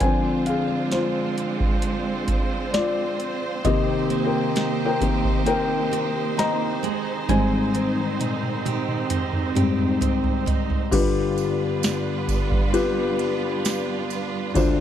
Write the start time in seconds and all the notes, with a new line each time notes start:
Already playing: D4 F4
0.00 D3 F3 G#3 C4 C5 G#5, kick, closed hi-hat
0.46 G#4 F5, closed hi-hat
0.91 F4 C5, snare, closed hi-hat
1.38 closed hi-hat
1.60 kick
1.82 closed hi-hat
2.28 kick, closed hi-hat
2.74 F4 D5, snare, closed hi-hat
3.20 closed hi-hat
3.64 C3 D#3 A#3 D#4 G4 D#5, kick, closed hi-hat
4.10 A#3, closed hi-hat
4.25 A#4 G5
4.55 D#4, snare, closed hi-hat
4.85 A#4 G5
5.00 C3 D#3 A#3 G4, kick, closed hi-hat
5.25 kick
5.45 D#4 A#4 G5, closed hi-hat
5.91 G4, closed hi-hat
6.37 A#3 D#5 A#5, snare, closed hi-hat
6.83 D#3 G#3 C4, closed hi-hat
7.29 G#2 G3 G#3 C4 C5 G#5, kick, closed hi-hat, high tom
7.52 high tom
7.74 C4, closed hi-hat, high tom
7.98 high tom
8.20 D#4, closed hi-hat, mid tom
8.43 mid tom
8.65 G4, closed hi-hat, mid tom
8.88 mid tom
9.10 D#4, closed hi-hat, mid tom
9.33 mid tom
9.55 G#2 G3 C4 G4, closed hi-hat, mid tom
9.78 mid tom
10.01 C4, closed hi-hat, floor tom
10.24 floor tom
10.46 D#4, closed hi-hat, floor tom
10.70 floor tom
10.91 G2 D3 G3 B3 D4 F4 G4 B4, kick, crash, ride, tambourine
11.38 ride, tambourine
11.83 snare, ride, tambourine
12.28 kick, ride, tambourine
12.52 kick
12.73 F4 G4 B4, ride, tambourine
13.19 ride
13.65 snare, ride, tambourine
14.10 ride, tambourine
14.54 D2 D3 G#3 C4 D4 F4 C5, kick, ride, tambourine